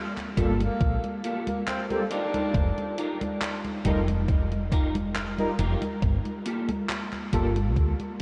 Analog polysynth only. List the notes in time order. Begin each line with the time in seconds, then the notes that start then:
0.36 G3 A#3 F4 A4
1.89 G3 A#3 F4 A4
3.84 G3 D#4 F4 A#4
5.37 G3 D#4 F4 A#4
7.32 G3 A#3 F4 A4